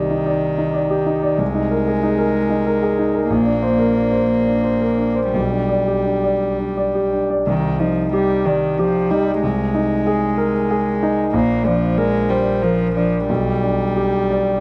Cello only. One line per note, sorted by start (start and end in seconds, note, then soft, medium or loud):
0.00 1.41 D#3 soft
1.39 3.30 G#3 soft
3.30 5.30 A#3 soft
5.34 7.22 G3 soft
7.47 7.81 D#3 soft
7.79 8.12 F3 soft
8.13 8.47 G3 soft
8.45 8.79 D#3 soft
8.77 9.12 F3 soft
9.10 9.42 G3 medium
9.43 11.30 G#3 soft
11.35 11.68 A#3 medium
11.66 11.98 F3 medium
11.97 12.31 G#3 medium
12.29 12.64 G3 medium
12.62 12.94 F3 medium
12.95 13.28 F3 soft
13.28 14.60 G3 soft